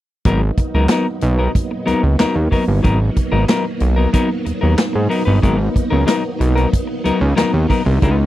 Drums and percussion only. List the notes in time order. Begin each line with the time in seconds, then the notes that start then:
0.25 kick, closed hi-hat
0.57 kick, closed hi-hat
0.89 snare, clap, closed hi-hat
1.21 closed hi-hat
1.55 kick, closed hi-hat
1.87 closed hi-hat
2.19 snare, clap, closed hi-hat
2.52 kick, open hi-hat
2.84 kick, closed hi-hat
3.16 kick, closed hi-hat
3.49 snare, clap, closed hi-hat
3.80 closed hi-hat
4.13 kick, closed hi-hat
4.46 closed hi-hat
4.78 snare, clap, closed hi-hat
5.11 open hi-hat
5.43 kick, closed hi-hat
5.76 kick, closed hi-hat
6.08 snare, clap, closed hi-hat
6.41 closed hi-hat
6.57 closed hi-hat
6.73 kick, closed hi-hat
7.05 closed hi-hat
7.38 snare, clap, closed hi-hat
7.70 kick, open hi-hat
8.02 kick, closed hi-hat